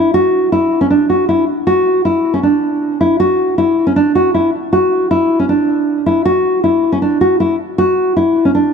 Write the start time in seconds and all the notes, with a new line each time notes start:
0.14 F#4
0.52 E4
0.81 C#4
0.90 D4
1.10 F#4
1.29 E4
1.67 F#4
2.05 E4
2.34 C#4
2.43 D4
3.01 E4
3.20 F#4
3.58 E4
3.87 C#4
3.96 D4
4.15 F#4
4.34 E4
4.73 F#4
5.11 E4
5.39 C#4
5.49 D4
6.06 E4
6.25 F#4
6.64 E4
6.92 C#4
7.02 D4
7.21 F#4
7.40 E4
7.78 F#4
8.16 E4
8.45 C#4
8.55 D4